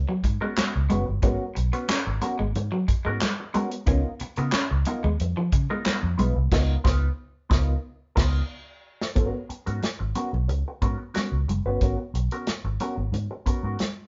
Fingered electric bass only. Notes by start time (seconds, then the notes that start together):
0.24 G#2
0.76 C#2
0.91 F#1
1.09 G1
1.23 G#1
1.57 B1
2.07 G#1
2.40 G#1
2.55 G#2
2.89 muted fingered electric bass stroke
3.06 G#2
3.87 C#2
4.21 muted fingered electric bass stroke
4.38 C#3
4.71 C#2
5.04 D#2
5.20 F2
5.53 C#3
6.03 F2
6.18 B1
6.36 C2
6.52 C#2
6.85 C#2
7.51 C#2
8.17 C#2
9.16 G#1
9.50 muted fingered electric bass stroke
9.67 G#2
10.00 G#1
10.33 B1
10.49 C#2
10.82 G#2
11.32 C#2
11.48 F#1
11.65 G1
11.82 G#1
12.14 B1
12.64 G#1
12.97 G#1
13.12 G#2
13.46 muted fingered electric bass stroke
13.63 G#2